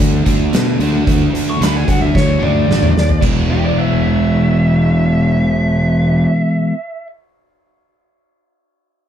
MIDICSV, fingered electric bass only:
0, 0, Header, 1, 2, 480
1, 0, Start_track
1, 0, Tempo, 536673
1, 964, Time_signature, 4, 2, 24, 8
1, 8127, End_track
2, 0, Start_track
2, 0, Title_t, "Fingered electric bass"
2, 0, Program_c, 0, 33
2, 0, Note_on_c, 0, 38, 73
2, 204, Note_off_c, 0, 38, 0
2, 236, Note_on_c, 0, 38, 87
2, 445, Note_off_c, 0, 38, 0
2, 474, Note_on_c, 0, 47, 86
2, 684, Note_off_c, 0, 47, 0
2, 709, Note_on_c, 0, 38, 90
2, 921, Note_off_c, 0, 38, 0
2, 958, Note_on_c, 0, 38, 102
2, 1166, Note_off_c, 0, 38, 0
2, 1196, Note_on_c, 0, 38, 74
2, 1405, Note_off_c, 0, 38, 0
2, 1439, Note_on_c, 0, 38, 90
2, 1647, Note_off_c, 0, 38, 0
2, 1679, Note_on_c, 0, 38, 73
2, 1887, Note_off_c, 0, 38, 0
2, 1921, Note_on_c, 0, 38, 81
2, 2128, Note_off_c, 0, 38, 0
2, 2160, Note_on_c, 0, 38, 75
2, 2368, Note_off_c, 0, 38, 0
2, 2396, Note_on_c, 0, 33, 80
2, 2606, Note_off_c, 0, 33, 0
2, 2641, Note_on_c, 0, 39, 76
2, 2848, Note_off_c, 0, 39, 0
2, 2882, Note_on_c, 0, 28, 85
2, 5594, Note_off_c, 0, 28, 0
2, 8127, End_track
0, 0, End_of_file